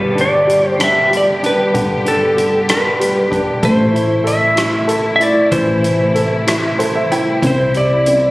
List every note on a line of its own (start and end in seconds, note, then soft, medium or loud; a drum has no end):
0.00 1.71 G1 medium
0.00 3.59 D3 medium
0.00 0.45 G3 medium
0.00 3.59 G3 medium
0.00 3.59 B3 medium
0.00 3.59 G4 medium
0.00 0.19 B4 medium
0.15 0.77 D4 soft
0.15 closed hi-hat soft
0.21 0.69 D5 medium
0.47 1.09 G3 soft
0.47 closed hi-hat soft
0.69 0.84 C5 medium
0.79 1.41 D4 soft
0.79 cross-stick loud
0.79 closed hi-hat medium
0.84 1.12 E5 medium
1.10 2.33 G3 medium
1.10 closed hi-hat soft
1.17 1.25 D5 medium
1.43 2.03 D4 medium
1.43 2.04 B4 medium
1.43 closed hi-hat soft
1.74 3.59 G1 medium
1.74 3.59 D3 medium
1.74 kick medium
1.74 closed hi-hat medium
2.05 2.68 D4 soft
2.05 2.66 A4 medium
2.05 closed hi-hat soft
2.37 2.98 G3 soft
2.37 closed hi-hat soft
2.69 3.29 D4 soft
2.69 3.37 B4 medium
2.69 cross-stick loud
2.69 closed hi-hat medium
3.00 3.61 G3 medium
3.00 closed hi-hat soft
3.31 3.62 D4 soft
3.31 kick medium
3.31 closed hi-hat soft
3.61 5.48 A1 medium
3.61 8.31 C3 medium
3.61 8.31 E3 medium
3.61 7.38 A3 medium
3.61 5.48 A3 medium
3.61 8.31 E4 medium
3.61 4.29 C5 medium
3.61 kick medium
3.61 closed hi-hat medium
3.93 4.54 E4 soft
3.93 closed hi-hat soft
4.24 4.86 A4 medium
4.24 5.15 E5 medium
4.24 closed hi-hat soft
4.55 5.18 E4 soft
4.55 cross-stick loud
4.55 closed hi-hat medium
4.87 6.11 A4 medium
4.87 closed hi-hat soft
5.16 5.82 E4 medium
5.16 5.22 E5 medium
5.21 5.51 D5 medium
5.21 closed hi-hat soft
5.51 7.39 A1 medium
5.51 7.39 E3 medium
5.51 6.20 C5 medium
5.51 kick medium
5.51 closed hi-hat medium
5.83 6.45 E4 soft
5.83 closed hi-hat soft
6.15 6.77 A4 soft
6.15 closed hi-hat soft
6.47 7.10 E4 soft
6.47 cross-stick loud
6.47 closed hi-hat medium
6.79 7.41 A4 soft
6.79 6.94 C5 medium
6.79 closed hi-hat soft
6.95 7.10 E5 medium
7.12 7.42 E4 soft
7.12 7.41 G5 medium
7.12 closed hi-hat soft
7.42 8.31 C2 medium
7.42 8.31 G3 medium
7.42 8.06 C4 medium
7.42 kick medium
7.42 closed hi-hat medium
7.47 7.77 C5 medium
7.74 8.31 G4 soft
7.74 8.31 D5 medium
7.74 closed hi-hat soft
8.06 8.31 C4 soft
8.06 closed hi-hat soft